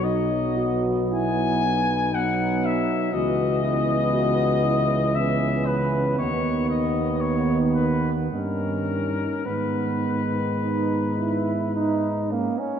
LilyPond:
<<
  \new Staff \with { instrumentName = "Cornet" } { \time 3/4 \key gis \minor \tempo 4 = 56 dis''8. r16 gis''4 fis''8 e''8 | dis''2 e''8 b'8 | cis''8 dis''8 cis''8 b'8 ais'4 | b'2~ b'8 r8 | }
  \new Staff \with { instrumentName = "Euphonium" } { \time 3/4 \key gis \minor dis'8 fis'8 e'8 dis'4. | fis'8 e'8 fis'8 e'8 cis'4 | b2 dis'4 | b2~ b8 r8 | }
  \new Staff \with { instrumentName = "French horn section" } { \time 3/4 \key gis \minor b2 b4 | b2 b4 | b2 cis'4 | b4 dis'8 e'8 dis'8 cis'8 | }
  \new Staff \with { instrumentName = "Trombone" } { \clef bass \time 3/4 \key gis \minor fis4.~ fis16 r16 fis4 | e2 e4 | dis2 dis8. r16 | dis2 dis'8 ais16 cis'16 | }
  \new Staff \with { instrumentName = "Tuba" } { \clef bass \time 3/4 \key gis \minor b,,2~ b,,8. r16 | cis,2. | dis,2 g,4 | gis,2~ gis,8 r8 | }
>>